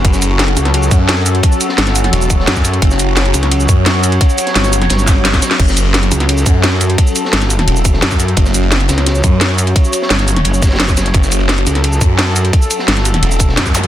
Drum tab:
CC |--------------------------------|--------------------------------|--------------------------------|--------------------------------|
RD |x---x-x-x---x---x---x---x---x-x-|x---x---x---x---x---x---x---x---|x---x-x-x---x---x---x---x---x-x-|x---x---x---x---x---x-x-x---x---|
HH |x---x---x-x-x-x-x---x---x---x-x-|x---x---x-x-x-x-x---x---x---x-x-|x---x---x-x-x-x-x---x---x---x-x-|x---x-x-x-x-x-x-x---x---x---x-x-|
SH |--x-x-------x-----x-x-------x---|--x-x-------x-----x-x-----x-x---|--x-x-------x-----x-x-------x---|--x-x-----x-x-----x-x-----x-x---|
SD |--o-----o-o---o---------o-------|------o-o-o---o-------o-o-o-----|--o-----o-o---o---------o-------|------o-o-o---o-o---o---o-o-o-o-|
BD |o-------------------o-----------|o-------------------o-----o-----|o-------------------o-----------|o-------------------o-----o-----|

CC |x-------------------------------|--------------------------------|--------------------------------|--------------------------------|
RD |x---x-x-x---x---x---x---x---x-x-|x---x---x---x---x---x---x---x---|x---x-x-x---x---x---x---x---x-x-|x---x---x---x---x---xxxxx---x---|
HH |x---x---x-x-x-x-x---x---x---x-x-|x---x---x-x-x-x-x---x---x---x-x-|x---x---x-x-x-x-x---x---x---x-x-|x---x---x-x-x-x-x---x---x---x-x-|
SH |--x-x-------x-----x-x-------x---|--x-x-------x-----x-x-----x-x---|--x-x-------x-----x-x-------x---|--x-x-------x-----x-x-----x-x---|
SD |--o-----o-o---o---------o-------|------o-o-o---o-------o-o-o-----|--o-----o-o-o-o-o-------o-------|------o-o-o---o-----ooooo-o-o---|
BD |o-------------------o-----------|o-------------------o-----o-----|o-------------------o-----------|o-------------------o-----o-----|

CC |--------------------------------|--------------------------------|
RD |x---x-x-x---x---x---x---x---x-x-|x---x---x---x---x---x---x---x---|
HH |x---x---x-x-x-x-x---x---x---x-x-|x---x---x-x-x-x-x---x---x---x-x-|
SH |--x-x-------x-----x-x-------x---|--x-x-------x-----x-x-----x-x---|
SD |--o-----o-o---o---------o-------|------o-o-o---o-------o-o-o-----|
BD |o-------------------o-----------|o-------------------o-----o-----|